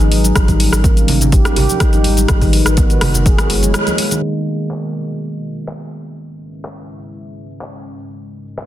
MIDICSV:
0, 0, Header, 1, 5, 480
1, 0, Start_track
1, 0, Key_signature, 5, "minor"
1, 0, Tempo, 483871
1, 354, Time_signature, 4, 2, 24, 8
1, 8592, End_track
2, 0, Start_track
2, 0, Title_t, "Analog synth pad"
2, 0, Program_c, 0, 89
2, 0, Note_on_c, 0, 56, 86
2, 0, Note_on_c, 0, 61, 78
2, 0, Note_on_c, 0, 71, 91
2, 317, Note_off_c, 0, 71, 0
2, 318, Note_off_c, 0, 56, 0
2, 336, Note_off_c, 0, 61, 0
2, 357, Note_on_c, 0, 55, 87
2, 357, Note_on_c, 0, 61, 79
2, 359, Note_on_c, 0, 70, 95
2, 360, Note_on_c, 0, 63, 76
2, 2256, Note_off_c, 0, 61, 0
2, 2257, Note_off_c, 0, 55, 0
2, 2257, Note_off_c, 0, 70, 0
2, 2270, Note_on_c, 0, 71, 89
2, 2271, Note_on_c, 0, 66, 76
2, 2271, Note_on_c, 0, 70, 83
2, 3208, Note_off_c, 0, 63, 0
2, 3222, Note_off_c, 0, 71, 0
2, 3232, Note_on_c, 0, 73, 87
2, 3234, Note_on_c, 0, 64, 75
2, 4173, Note_off_c, 0, 66, 0
2, 4173, Note_off_c, 0, 70, 0
2, 4183, Note_off_c, 0, 73, 0
2, 4184, Note_off_c, 0, 64, 0
2, 4192, Note_on_c, 0, 59, 80
2, 4194, Note_on_c, 0, 68, 76
2, 4194, Note_on_c, 0, 75, 89
2, 4195, Note_on_c, 0, 66, 74
2, 6094, Note_off_c, 0, 59, 0
2, 6095, Note_off_c, 0, 66, 0
2, 6095, Note_off_c, 0, 68, 0
2, 6095, Note_off_c, 0, 75, 0
2, 6114, Note_on_c, 0, 56, 78
2, 6115, Note_on_c, 0, 76, 89
2, 6116, Note_on_c, 0, 61, 74
2, 6116, Note_on_c, 0, 68, 75
2, 6118, Note_on_c, 0, 71, 75
2, 8015, Note_off_c, 0, 76, 0
2, 8016, Note_off_c, 0, 68, 0
2, 8017, Note_off_c, 0, 71, 0
2, 8033, Note_on_c, 0, 75, 92
2, 8034, Note_on_c, 0, 67, 75
2, 8035, Note_on_c, 0, 70, 75
2, 8592, Note_off_c, 0, 56, 0
2, 8592, Note_off_c, 0, 61, 0
2, 8592, Note_off_c, 0, 67, 0
2, 8592, Note_off_c, 0, 70, 0
2, 8592, Note_off_c, 0, 75, 0
2, 8592, End_track
3, 0, Start_track
3, 0, Title_t, "Handpan"
3, 0, Program_c, 1, 114
3, 0, Note_on_c, 1, 63, 81
3, 102, Note_off_c, 1, 63, 0
3, 112, Note_on_c, 1, 54, 78
3, 226, Note_off_c, 1, 54, 0
3, 241, Note_on_c, 1, 54, 77
3, 302, Note_off_c, 1, 54, 0
3, 356, Note_on_c, 1, 55, 83
3, 423, Note_off_c, 1, 55, 0
3, 480, Note_on_c, 1, 51, 100
3, 542, Note_off_c, 1, 51, 0
3, 836, Note_on_c, 1, 58, 84
3, 955, Note_off_c, 1, 58, 0
3, 1318, Note_on_c, 1, 67, 85
3, 1384, Note_off_c, 1, 67, 0
3, 1553, Note_on_c, 1, 67, 102
3, 1667, Note_off_c, 1, 67, 0
3, 1793, Note_on_c, 1, 63, 85
3, 1907, Note_off_c, 1, 63, 0
3, 1919, Note_on_c, 1, 63, 76
3, 2022, Note_off_c, 1, 63, 0
3, 2030, Note_on_c, 1, 55, 76
3, 2145, Note_off_c, 1, 55, 0
3, 2159, Note_on_c, 1, 55, 77
3, 2221, Note_off_c, 1, 55, 0
3, 2271, Note_on_c, 1, 56, 82
3, 2341, Note_off_c, 1, 56, 0
3, 2398, Note_on_c, 1, 51, 104
3, 2461, Note_off_c, 1, 51, 0
3, 2751, Note_on_c, 1, 59, 83
3, 2872, Note_off_c, 1, 59, 0
3, 3231, Note_on_c, 1, 68, 86
3, 3300, Note_off_c, 1, 68, 0
3, 3477, Note_on_c, 1, 56, 78
3, 3589, Note_off_c, 1, 56, 0
3, 3605, Note_on_c, 1, 56, 78
3, 3706, Note_off_c, 1, 56, 0
3, 3718, Note_on_c, 1, 56, 84
3, 3829, Note_off_c, 1, 56, 0
3, 3841, Note_on_c, 1, 58, 80
3, 3949, Note_off_c, 1, 58, 0
3, 3958, Note_on_c, 1, 56, 79
3, 4024, Note_off_c, 1, 56, 0
3, 4083, Note_on_c, 1, 51, 77
3, 4184, Note_off_c, 1, 51, 0
3, 8592, End_track
4, 0, Start_track
4, 0, Title_t, "Sub bass"
4, 0, Program_c, 2, 38
4, 0, Note_on_c, 2, 32, 101
4, 317, Note_off_c, 2, 32, 0
4, 355, Note_on_c, 2, 32, 100
4, 681, Note_off_c, 2, 32, 0
4, 719, Note_on_c, 2, 32, 101
4, 1038, Note_off_c, 2, 32, 0
4, 1074, Note_on_c, 2, 32, 93
4, 1401, Note_off_c, 2, 32, 0
4, 1552, Note_on_c, 2, 32, 95
4, 1654, Note_off_c, 2, 32, 0
4, 1916, Note_on_c, 2, 32, 101
4, 2237, Note_off_c, 2, 32, 0
4, 2273, Note_on_c, 2, 32, 100
4, 2600, Note_off_c, 2, 32, 0
4, 2639, Note_on_c, 2, 32, 101
4, 2958, Note_off_c, 2, 32, 0
4, 2987, Note_on_c, 2, 30, 92
4, 3317, Note_off_c, 2, 30, 0
4, 3472, Note_on_c, 2, 30, 88
4, 3713, Note_off_c, 2, 30, 0
4, 8592, End_track
5, 0, Start_track
5, 0, Title_t, "Drums"
5, 4, Note_on_c, 9, 69, 39
5, 103, Note_off_c, 9, 69, 0
5, 115, Note_on_c, 9, 46, 93
5, 214, Note_off_c, 9, 46, 0
5, 240, Note_on_c, 9, 42, 32
5, 243, Note_on_c, 9, 62, 47
5, 245, Note_on_c, 9, 69, 78
5, 339, Note_off_c, 9, 42, 0
5, 343, Note_off_c, 9, 62, 0
5, 344, Note_off_c, 9, 69, 0
5, 353, Note_on_c, 9, 37, 89
5, 353, Note_on_c, 9, 42, 71
5, 355, Note_on_c, 9, 36, 115
5, 358, Note_on_c, 9, 69, 62
5, 452, Note_off_c, 9, 37, 0
5, 452, Note_off_c, 9, 42, 0
5, 454, Note_off_c, 9, 36, 0
5, 457, Note_off_c, 9, 69, 0
5, 479, Note_on_c, 9, 42, 47
5, 480, Note_on_c, 9, 36, 56
5, 484, Note_on_c, 9, 69, 37
5, 578, Note_off_c, 9, 42, 0
5, 580, Note_off_c, 9, 36, 0
5, 583, Note_off_c, 9, 69, 0
5, 595, Note_on_c, 9, 46, 93
5, 694, Note_off_c, 9, 46, 0
5, 720, Note_on_c, 9, 37, 78
5, 723, Note_on_c, 9, 62, 51
5, 725, Note_on_c, 9, 69, 77
5, 819, Note_off_c, 9, 37, 0
5, 822, Note_off_c, 9, 62, 0
5, 825, Note_off_c, 9, 69, 0
5, 834, Note_on_c, 9, 36, 113
5, 835, Note_on_c, 9, 42, 71
5, 840, Note_on_c, 9, 69, 63
5, 842, Note_on_c, 9, 63, 57
5, 933, Note_off_c, 9, 36, 0
5, 934, Note_off_c, 9, 42, 0
5, 939, Note_off_c, 9, 69, 0
5, 941, Note_off_c, 9, 63, 0
5, 962, Note_on_c, 9, 42, 49
5, 968, Note_on_c, 9, 69, 38
5, 1062, Note_off_c, 9, 42, 0
5, 1067, Note_off_c, 9, 69, 0
5, 1072, Note_on_c, 9, 46, 94
5, 1077, Note_on_c, 9, 62, 38
5, 1079, Note_on_c, 9, 64, 84
5, 1172, Note_off_c, 9, 46, 0
5, 1177, Note_off_c, 9, 62, 0
5, 1178, Note_off_c, 9, 64, 0
5, 1201, Note_on_c, 9, 42, 34
5, 1206, Note_on_c, 9, 69, 75
5, 1209, Note_on_c, 9, 64, 99
5, 1300, Note_off_c, 9, 42, 0
5, 1305, Note_off_c, 9, 69, 0
5, 1308, Note_off_c, 9, 64, 0
5, 1312, Note_on_c, 9, 42, 72
5, 1314, Note_on_c, 9, 36, 115
5, 1318, Note_on_c, 9, 69, 63
5, 1412, Note_off_c, 9, 42, 0
5, 1414, Note_off_c, 9, 36, 0
5, 1417, Note_off_c, 9, 69, 0
5, 1440, Note_on_c, 9, 37, 79
5, 1440, Note_on_c, 9, 42, 48
5, 1441, Note_on_c, 9, 62, 58
5, 1446, Note_on_c, 9, 69, 39
5, 1540, Note_off_c, 9, 37, 0
5, 1540, Note_off_c, 9, 42, 0
5, 1541, Note_off_c, 9, 62, 0
5, 1545, Note_off_c, 9, 69, 0
5, 1552, Note_on_c, 9, 46, 91
5, 1565, Note_on_c, 9, 64, 87
5, 1651, Note_off_c, 9, 46, 0
5, 1664, Note_off_c, 9, 64, 0
5, 1681, Note_on_c, 9, 69, 74
5, 1684, Note_on_c, 9, 63, 61
5, 1781, Note_off_c, 9, 69, 0
5, 1783, Note_off_c, 9, 63, 0
5, 1788, Note_on_c, 9, 37, 88
5, 1788, Note_on_c, 9, 42, 69
5, 1793, Note_on_c, 9, 36, 111
5, 1793, Note_on_c, 9, 69, 59
5, 1887, Note_off_c, 9, 37, 0
5, 1887, Note_off_c, 9, 42, 0
5, 1893, Note_off_c, 9, 36, 0
5, 1893, Note_off_c, 9, 69, 0
5, 1913, Note_on_c, 9, 42, 47
5, 1917, Note_on_c, 9, 63, 78
5, 1919, Note_on_c, 9, 69, 38
5, 2013, Note_off_c, 9, 42, 0
5, 2016, Note_off_c, 9, 63, 0
5, 2018, Note_off_c, 9, 69, 0
5, 2027, Note_on_c, 9, 46, 95
5, 2035, Note_on_c, 9, 63, 59
5, 2126, Note_off_c, 9, 46, 0
5, 2134, Note_off_c, 9, 63, 0
5, 2153, Note_on_c, 9, 42, 33
5, 2158, Note_on_c, 9, 69, 75
5, 2166, Note_on_c, 9, 62, 50
5, 2252, Note_off_c, 9, 42, 0
5, 2257, Note_off_c, 9, 69, 0
5, 2265, Note_off_c, 9, 62, 0
5, 2267, Note_on_c, 9, 37, 95
5, 2267, Note_on_c, 9, 42, 71
5, 2272, Note_on_c, 9, 69, 64
5, 2273, Note_on_c, 9, 36, 117
5, 2366, Note_off_c, 9, 37, 0
5, 2366, Note_off_c, 9, 42, 0
5, 2371, Note_off_c, 9, 69, 0
5, 2372, Note_off_c, 9, 36, 0
5, 2395, Note_on_c, 9, 46, 56
5, 2399, Note_on_c, 9, 36, 59
5, 2401, Note_on_c, 9, 69, 38
5, 2495, Note_off_c, 9, 46, 0
5, 2498, Note_off_c, 9, 36, 0
5, 2500, Note_off_c, 9, 69, 0
5, 2510, Note_on_c, 9, 46, 96
5, 2518, Note_on_c, 9, 63, 62
5, 2610, Note_off_c, 9, 46, 0
5, 2617, Note_off_c, 9, 63, 0
5, 2637, Note_on_c, 9, 37, 81
5, 2637, Note_on_c, 9, 42, 34
5, 2642, Note_on_c, 9, 69, 77
5, 2653, Note_on_c, 9, 62, 53
5, 2736, Note_off_c, 9, 37, 0
5, 2736, Note_off_c, 9, 42, 0
5, 2741, Note_off_c, 9, 69, 0
5, 2748, Note_on_c, 9, 42, 69
5, 2752, Note_off_c, 9, 62, 0
5, 2753, Note_on_c, 9, 36, 113
5, 2753, Note_on_c, 9, 69, 65
5, 2761, Note_on_c, 9, 63, 64
5, 2847, Note_off_c, 9, 42, 0
5, 2852, Note_off_c, 9, 69, 0
5, 2853, Note_off_c, 9, 36, 0
5, 2860, Note_off_c, 9, 63, 0
5, 2877, Note_on_c, 9, 42, 47
5, 2882, Note_on_c, 9, 69, 39
5, 2976, Note_off_c, 9, 42, 0
5, 2981, Note_off_c, 9, 69, 0
5, 2988, Note_on_c, 9, 37, 96
5, 2988, Note_on_c, 9, 46, 97
5, 3000, Note_on_c, 9, 64, 100
5, 3087, Note_off_c, 9, 37, 0
5, 3087, Note_off_c, 9, 46, 0
5, 3099, Note_off_c, 9, 64, 0
5, 3117, Note_on_c, 9, 42, 33
5, 3122, Note_on_c, 9, 64, 94
5, 3123, Note_on_c, 9, 69, 78
5, 3217, Note_off_c, 9, 42, 0
5, 3221, Note_off_c, 9, 64, 0
5, 3222, Note_off_c, 9, 69, 0
5, 3232, Note_on_c, 9, 42, 73
5, 3233, Note_on_c, 9, 36, 117
5, 3237, Note_on_c, 9, 69, 67
5, 3331, Note_off_c, 9, 42, 0
5, 3332, Note_off_c, 9, 36, 0
5, 3336, Note_off_c, 9, 69, 0
5, 3358, Note_on_c, 9, 37, 83
5, 3358, Note_on_c, 9, 42, 47
5, 3360, Note_on_c, 9, 62, 53
5, 3363, Note_on_c, 9, 69, 38
5, 3457, Note_off_c, 9, 37, 0
5, 3457, Note_off_c, 9, 42, 0
5, 3459, Note_off_c, 9, 62, 0
5, 3462, Note_off_c, 9, 69, 0
5, 3470, Note_on_c, 9, 46, 96
5, 3569, Note_off_c, 9, 46, 0
5, 3598, Note_on_c, 9, 42, 32
5, 3601, Note_on_c, 9, 63, 59
5, 3603, Note_on_c, 9, 69, 77
5, 3697, Note_off_c, 9, 42, 0
5, 3700, Note_off_c, 9, 63, 0
5, 3702, Note_off_c, 9, 69, 0
5, 3710, Note_on_c, 9, 37, 94
5, 3710, Note_on_c, 9, 42, 67
5, 3716, Note_on_c, 9, 69, 62
5, 3720, Note_on_c, 9, 62, 44
5, 3810, Note_off_c, 9, 37, 0
5, 3810, Note_off_c, 9, 42, 0
5, 3815, Note_off_c, 9, 69, 0
5, 3820, Note_off_c, 9, 62, 0
5, 3837, Note_on_c, 9, 42, 46
5, 3842, Note_on_c, 9, 63, 89
5, 3843, Note_on_c, 9, 69, 39
5, 3936, Note_off_c, 9, 42, 0
5, 3941, Note_off_c, 9, 63, 0
5, 3942, Note_off_c, 9, 69, 0
5, 3951, Note_on_c, 9, 46, 96
5, 4050, Note_off_c, 9, 46, 0
5, 4079, Note_on_c, 9, 42, 33
5, 4083, Note_on_c, 9, 62, 52
5, 4084, Note_on_c, 9, 69, 77
5, 4178, Note_off_c, 9, 42, 0
5, 4182, Note_off_c, 9, 62, 0
5, 4183, Note_off_c, 9, 69, 0
5, 4562, Note_on_c, 9, 69, 76
5, 4661, Note_off_c, 9, 69, 0
5, 4672, Note_on_c, 9, 39, 91
5, 4771, Note_off_c, 9, 39, 0
5, 5048, Note_on_c, 9, 69, 76
5, 5147, Note_off_c, 9, 69, 0
5, 5163, Note_on_c, 9, 69, 62
5, 5262, Note_off_c, 9, 69, 0
5, 5290, Note_on_c, 9, 69, 39
5, 5389, Note_off_c, 9, 69, 0
5, 5530, Note_on_c, 9, 69, 74
5, 5629, Note_off_c, 9, 69, 0
5, 5639, Note_on_c, 9, 39, 88
5, 5738, Note_off_c, 9, 39, 0
5, 6006, Note_on_c, 9, 69, 75
5, 6105, Note_off_c, 9, 69, 0
5, 6119, Note_on_c, 9, 69, 64
5, 6219, Note_off_c, 9, 69, 0
5, 6247, Note_on_c, 9, 69, 39
5, 6346, Note_off_c, 9, 69, 0
5, 6484, Note_on_c, 9, 69, 77
5, 6583, Note_off_c, 9, 69, 0
5, 6596, Note_on_c, 9, 39, 91
5, 6696, Note_off_c, 9, 39, 0
5, 6964, Note_on_c, 9, 69, 77
5, 7063, Note_off_c, 9, 69, 0
5, 7081, Note_on_c, 9, 69, 65
5, 7180, Note_off_c, 9, 69, 0
5, 7208, Note_on_c, 9, 69, 39
5, 7307, Note_off_c, 9, 69, 0
5, 7446, Note_on_c, 9, 69, 77
5, 7546, Note_off_c, 9, 69, 0
5, 7553, Note_on_c, 9, 39, 89
5, 7652, Note_off_c, 9, 39, 0
5, 7926, Note_on_c, 9, 69, 80
5, 8026, Note_off_c, 9, 69, 0
5, 8041, Note_on_c, 9, 69, 63
5, 8140, Note_off_c, 9, 69, 0
5, 8168, Note_on_c, 9, 69, 39
5, 8267, Note_off_c, 9, 69, 0
5, 8408, Note_on_c, 9, 69, 76
5, 8507, Note_off_c, 9, 69, 0
5, 8517, Note_on_c, 9, 39, 90
5, 8592, Note_off_c, 9, 39, 0
5, 8592, End_track
0, 0, End_of_file